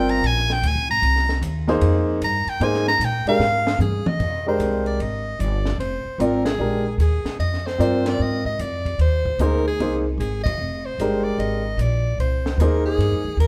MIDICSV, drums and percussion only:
0, 0, Header, 1, 2, 480
1, 0, Start_track
1, 0, Tempo, 398936
1, 1230, Time_signature, 4, 2, 24, 8
1, 16208, End_track
2, 0, Start_track
2, 0, Title_t, "Drums"
2, 109, Note_on_c, 9, 51, 52
2, 230, Note_off_c, 9, 51, 0
2, 287, Note_on_c, 9, 51, 72
2, 408, Note_off_c, 9, 51, 0
2, 436, Note_on_c, 9, 38, 29
2, 556, Note_off_c, 9, 38, 0
2, 601, Note_on_c, 9, 38, 48
2, 721, Note_off_c, 9, 38, 0
2, 762, Note_on_c, 9, 44, 63
2, 762, Note_on_c, 9, 51, 81
2, 882, Note_off_c, 9, 44, 0
2, 882, Note_off_c, 9, 51, 0
2, 1239, Note_on_c, 9, 51, 62
2, 1359, Note_off_c, 9, 51, 0
2, 1397, Note_on_c, 9, 38, 30
2, 1517, Note_off_c, 9, 38, 0
2, 1553, Note_on_c, 9, 38, 50
2, 1673, Note_off_c, 9, 38, 0
2, 1714, Note_on_c, 9, 44, 65
2, 1714, Note_on_c, 9, 51, 74
2, 1834, Note_off_c, 9, 44, 0
2, 1834, Note_off_c, 9, 51, 0
2, 2016, Note_on_c, 9, 38, 45
2, 2136, Note_off_c, 9, 38, 0
2, 2181, Note_on_c, 9, 51, 70
2, 2302, Note_off_c, 9, 51, 0
2, 2667, Note_on_c, 9, 44, 55
2, 2667, Note_on_c, 9, 51, 74
2, 2787, Note_off_c, 9, 44, 0
2, 2787, Note_off_c, 9, 51, 0
2, 2978, Note_on_c, 9, 51, 52
2, 3098, Note_off_c, 9, 51, 0
2, 3141, Note_on_c, 9, 51, 67
2, 3261, Note_off_c, 9, 51, 0
2, 3298, Note_on_c, 9, 38, 31
2, 3418, Note_off_c, 9, 38, 0
2, 3460, Note_on_c, 9, 38, 50
2, 3580, Note_off_c, 9, 38, 0
2, 3619, Note_on_c, 9, 44, 70
2, 3619, Note_on_c, 9, 51, 74
2, 3740, Note_off_c, 9, 44, 0
2, 3740, Note_off_c, 9, 51, 0
2, 3932, Note_on_c, 9, 51, 54
2, 4052, Note_off_c, 9, 51, 0
2, 4095, Note_on_c, 9, 38, 57
2, 4215, Note_off_c, 9, 38, 0
2, 4414, Note_on_c, 9, 38, 80
2, 4535, Note_off_c, 9, 38, 0
2, 4570, Note_on_c, 9, 47, 67
2, 4572, Note_on_c, 9, 44, 55
2, 4690, Note_off_c, 9, 47, 0
2, 4692, Note_off_c, 9, 44, 0
2, 4889, Note_on_c, 9, 47, 99
2, 5009, Note_off_c, 9, 47, 0
2, 5051, Note_on_c, 9, 49, 61
2, 5053, Note_on_c, 9, 36, 65
2, 5171, Note_off_c, 9, 49, 0
2, 5173, Note_off_c, 9, 36, 0
2, 5531, Note_on_c, 9, 44, 57
2, 5531, Note_on_c, 9, 51, 63
2, 5651, Note_off_c, 9, 44, 0
2, 5651, Note_off_c, 9, 51, 0
2, 5847, Note_on_c, 9, 51, 41
2, 5967, Note_off_c, 9, 51, 0
2, 6016, Note_on_c, 9, 51, 60
2, 6137, Note_off_c, 9, 51, 0
2, 6497, Note_on_c, 9, 44, 56
2, 6497, Note_on_c, 9, 51, 60
2, 6617, Note_off_c, 9, 44, 0
2, 6617, Note_off_c, 9, 51, 0
2, 6803, Note_on_c, 9, 38, 53
2, 6924, Note_off_c, 9, 38, 0
2, 6982, Note_on_c, 9, 51, 54
2, 7103, Note_off_c, 9, 51, 0
2, 7460, Note_on_c, 9, 44, 53
2, 7460, Note_on_c, 9, 51, 61
2, 7580, Note_off_c, 9, 44, 0
2, 7580, Note_off_c, 9, 51, 0
2, 7767, Note_on_c, 9, 38, 72
2, 7769, Note_on_c, 9, 51, 66
2, 7887, Note_off_c, 9, 38, 0
2, 7890, Note_off_c, 9, 51, 0
2, 8418, Note_on_c, 9, 44, 55
2, 8418, Note_on_c, 9, 51, 60
2, 8539, Note_off_c, 9, 44, 0
2, 8539, Note_off_c, 9, 51, 0
2, 8730, Note_on_c, 9, 38, 51
2, 8732, Note_on_c, 9, 51, 41
2, 8850, Note_off_c, 9, 38, 0
2, 8852, Note_off_c, 9, 51, 0
2, 8904, Note_on_c, 9, 51, 58
2, 9024, Note_off_c, 9, 51, 0
2, 9069, Note_on_c, 9, 38, 25
2, 9189, Note_off_c, 9, 38, 0
2, 9229, Note_on_c, 9, 38, 39
2, 9349, Note_off_c, 9, 38, 0
2, 9390, Note_on_c, 9, 44, 51
2, 9390, Note_on_c, 9, 51, 61
2, 9511, Note_off_c, 9, 44, 0
2, 9511, Note_off_c, 9, 51, 0
2, 9694, Note_on_c, 9, 38, 53
2, 9696, Note_on_c, 9, 51, 67
2, 9814, Note_off_c, 9, 38, 0
2, 9817, Note_off_c, 9, 51, 0
2, 10171, Note_on_c, 9, 36, 40
2, 10292, Note_off_c, 9, 36, 0
2, 10339, Note_on_c, 9, 44, 61
2, 10339, Note_on_c, 9, 51, 60
2, 10459, Note_off_c, 9, 44, 0
2, 10459, Note_off_c, 9, 51, 0
2, 10653, Note_on_c, 9, 36, 41
2, 10660, Note_on_c, 9, 51, 46
2, 10774, Note_off_c, 9, 36, 0
2, 10781, Note_off_c, 9, 51, 0
2, 10820, Note_on_c, 9, 51, 61
2, 10940, Note_off_c, 9, 51, 0
2, 11135, Note_on_c, 9, 36, 45
2, 11256, Note_off_c, 9, 36, 0
2, 11301, Note_on_c, 9, 44, 57
2, 11301, Note_on_c, 9, 51, 65
2, 11421, Note_off_c, 9, 44, 0
2, 11421, Note_off_c, 9, 51, 0
2, 11793, Note_on_c, 9, 51, 57
2, 11914, Note_off_c, 9, 51, 0
2, 12278, Note_on_c, 9, 44, 57
2, 12278, Note_on_c, 9, 51, 58
2, 12398, Note_off_c, 9, 44, 0
2, 12398, Note_off_c, 9, 51, 0
2, 12582, Note_on_c, 9, 36, 80
2, 12589, Note_on_c, 9, 51, 69
2, 12702, Note_off_c, 9, 36, 0
2, 12709, Note_off_c, 9, 51, 0
2, 13229, Note_on_c, 9, 44, 62
2, 13229, Note_on_c, 9, 51, 58
2, 13349, Note_off_c, 9, 44, 0
2, 13349, Note_off_c, 9, 51, 0
2, 13713, Note_on_c, 9, 51, 54
2, 13833, Note_off_c, 9, 51, 0
2, 14186, Note_on_c, 9, 44, 56
2, 14186, Note_on_c, 9, 51, 61
2, 14306, Note_off_c, 9, 44, 0
2, 14306, Note_off_c, 9, 51, 0
2, 14677, Note_on_c, 9, 51, 55
2, 14797, Note_off_c, 9, 51, 0
2, 14991, Note_on_c, 9, 38, 58
2, 15112, Note_off_c, 9, 38, 0
2, 15158, Note_on_c, 9, 44, 59
2, 15158, Note_on_c, 9, 51, 67
2, 15278, Note_off_c, 9, 44, 0
2, 15278, Note_off_c, 9, 51, 0
2, 15647, Note_on_c, 9, 51, 57
2, 15767, Note_off_c, 9, 51, 0
2, 16124, Note_on_c, 9, 44, 62
2, 16124, Note_on_c, 9, 51, 64
2, 16208, Note_off_c, 9, 44, 0
2, 16208, Note_off_c, 9, 51, 0
2, 16208, End_track
0, 0, End_of_file